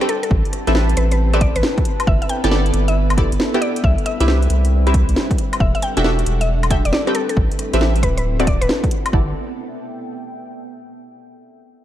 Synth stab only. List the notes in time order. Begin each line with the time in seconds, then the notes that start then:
0.01 C4 G4 A4 B4 G5
0.67 C4 G4 A4 B4 E5
0.75 C4 G4 B4 E5
1.33 C4 G4 A4 B4 E5
2.44 B3 E4 G4 A4 D5
2.51 B3 E4 G4 A4 D5
3.18 B3 E4 G4 A4 D5
3.54 B3 E4 G4 A4 G5
4.20 C4 E4 G4 B4 E5
4.28 C4 E4 G4 B4 E5
4.87 C4 E4 G4 B4 E5
5.97 D4 F#4 G4 A4 E5
6.04 D4 F#4 G4 A4 E5
6.71 D4 F#4 G4 A4 E5
7.07 C4 G4 A4 B4 G5
7.73 C4 G4 A4 B4 E5
7.81 C4 G4 A4 B4 E5
8.39 C4 E4 F#4 A4 D5
9.13 B3 E4 G4 A4 D5